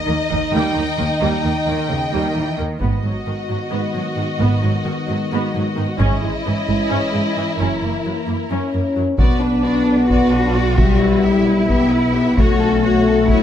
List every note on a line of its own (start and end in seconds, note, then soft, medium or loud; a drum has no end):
0.00 2.53 D#3 soft
0.00 2.54 D#4 medium
0.00 2.61 D#4 soft
0.00 0.52 D#5 medium
0.00 2.57 D#5 soft
0.07 0.17 D#2 soft
0.07 0.15 D#3 soft
0.07 0.17 A#3 soft
0.30 0.40 D#2 soft
0.30 0.38 D#3 soft
0.30 0.40 A#3 soft
0.30 0.40 D#4 soft
0.30 taiko soft
0.52 0.62 D#2 soft
0.52 0.60 D#3 soft
0.52 0.75 G3 soft
0.52 0.75 A#3 soft
0.52 1.21 G5 medium
0.74 0.85 D#2 soft
0.74 0.82 D#3 soft
0.74 0.86 A#3 soft
0.74 0.86 D#4 soft
0.98 1.07 D#2 soft
0.98 1.06 D#3 soft
0.98 1.07 A#3 soft
1.20 1.29 D#2 soft
1.20 1.28 D#3 soft
1.20 1.43 G3 soft
1.20 1.43 A#3 soft
1.20 2.56 G5 soft
1.44 1.52 D#2 soft
1.44 1.52 D#3 soft
1.44 1.53 A#3 soft
1.44 1.52 D#4 soft
1.66 1.75 D#2 soft
1.66 1.87 D#3 soft
1.66 1.76 A#3 soft
1.89 1.99 D#2 soft
1.89 2.12 C#3 soft
1.89 1.98 A#3 soft
1.89 1.98 D#4 soft
2.11 2.22 D#2 soft
2.11 2.34 D#3 soft
2.11 2.34 G3 soft
2.11 2.34 A#3 soft
2.34 2.45 D#2 soft
2.34 2.58 E3 soft
2.34 2.44 A#3 soft
2.34 2.43 D#4 soft
2.57 2.67 D#2 soft
2.57 2.80 D#3 soft
2.57 2.66 A#3 soft
2.78 3.02 G#1 soft
2.78 2.89 G#2 soft
2.78 5.95 D#3 soft
2.78 5.94 B3 soft
2.78 3.02 B3 soft
2.78 5.96 F#4 soft
2.78 5.95 D#5 soft
2.78 taiko soft
3.03 3.11 G#2 soft
3.03 3.12 F#3 soft
3.26 3.35 G#2 soft
3.26 3.34 D#3 soft
3.49 3.57 G#2 soft
3.49 3.57 F#3 soft
3.71 3.80 G#2 soft
3.71 3.93 B3 soft
3.94 4.03 G#2 soft
3.94 4.02 F#3 soft
4.16 4.24 G#2 soft
4.16 4.25 D#3 soft
4.39 4.61 G#1 soft
4.39 4.47 G#2 soft
4.39 4.62 B3 soft
4.63 4.71 G#2 soft
4.63 4.71 F#3 soft
4.86 4.94 G#2 soft
4.86 4.94 D#3 soft
5.09 5.17 G#2 soft
5.09 5.17 F#3 soft
5.32 5.40 G#2 medium
5.32 5.53 B3 soft
5.55 5.63 G#2 soft
5.55 5.63 F#3 soft
5.77 5.86 G#2 soft
5.77 5.85 D#3 soft
5.99 6.20 G#1 medium
5.99 6.08 G#2 medium
5.99 8.46 E3 medium
5.99 6.21 C#4 medium
5.99 7.55 C#4 medium
5.99 8.98 E4 medium
5.99 7.55 D#5 soft
5.99 taiko medium
6.23 6.31 G#2 soft
6.23 6.31 G#3 soft
6.46 6.55 G#2 soft
6.46 6.54 E3 soft
6.68 6.76 G#2 soft
6.68 6.77 G#3 soft
6.68 taiko soft
6.90 6.99 G#2 soft
6.90 7.11 C#4 medium
7.13 7.21 G#2 soft
7.13 7.21 G#3 soft
7.36 7.44 G#2 soft
7.36 7.45 E3 soft
7.58 7.80 F#1 soft
7.58 7.66 F#2 soft
7.58 8.46 A#3 soft
7.58 7.80 C#4 soft
7.58 8.99 A#4 soft
7.82 7.90 F#2 soft
7.82 7.91 A#3 soft
8.05 8.13 F#2 soft
8.05 8.13 F#3 soft
8.27 8.35 F#2 soft
8.27 8.36 A#3 soft
8.49 8.59 F#2 soft
8.49 9.14 C#4 medium
8.49 8.72 C#4 soft
8.73 8.83 F#2 soft
8.73 8.81 A#3 soft
8.96 9.06 F#2 soft
8.96 9.04 F#3 soft
9.18 12.33 B1 soft
9.18 10.60 B3 medium
9.18 9.40 B3 soft
9.18 9.40 F#4 soft
9.18 9.40 D5 soft
9.18 taiko medium
9.41 9.64 D4 soft
9.41 9.64 B4 soft
9.64 9.87 B3 soft
9.64 10.07 D4 soft
9.64 9.87 F#4 soft
9.64 9.87 D5 soft
9.85 10.09 D4 soft
9.85 10.10 D4 soft
9.85 10.10 B4 soft
10.08 10.31 B3 soft
10.08 10.30 F#4 soft
10.08 11.24 F#4 medium
10.08 10.32 D5 soft
10.08 taiko medium
10.32 10.55 D4 soft
10.32 10.55 B4 soft
10.54 10.77 B3 soft
10.54 10.78 F#4 soft
10.54 10.77 D5 soft
10.76 11.67 G3 medium
10.76 10.99 B3 soft
10.76 10.98 G4 soft
10.76 10.98 E5 soft
10.76 taiko medium
11.01 11.24 E4 soft
11.01 11.24 B4 soft
11.22 11.47 B3 soft
11.22 12.38 E4 soft
11.22 11.45 G4 soft
11.22 11.46 E5 soft
11.46 11.69 E4 soft
11.46 11.70 E4 soft
11.46 11.69 B4 soft
11.68 12.35 B3 medium
11.68 11.91 B3 soft
11.68 11.90 G4 soft
11.68 11.90 E5 soft
11.68 taiko medium
11.91 12.14 E4 soft
11.91 12.15 E4 soft
11.91 12.14 B4 soft
12.13 12.38 B3 soft
12.13 12.37 G4 soft
12.13 12.37 E5 soft
12.36 13.43 B1 soft
12.36 13.43 A3 medium
12.36 12.59 A3 soft
12.36 12.58 F#4 soft
12.36 12.82 F#4 soft
12.36 12.59 C#5 soft
12.36 taiko medium
12.59 12.83 C#4 soft
12.59 12.82 A4 soft
12.59 12.84 A4 soft
12.83 13.06 A3 soft
12.83 13.27 F#4 medium
12.83 13.06 F#4 soft
12.83 13.06 C#5 soft
13.06 13.29 C#4 soft
13.06 13.29 A4 soft
13.28 13.43 A3 soft
13.28 13.43 E4 soft
13.28 13.43 F#4 soft
13.28 13.43 C#5 soft
13.28 taiko medium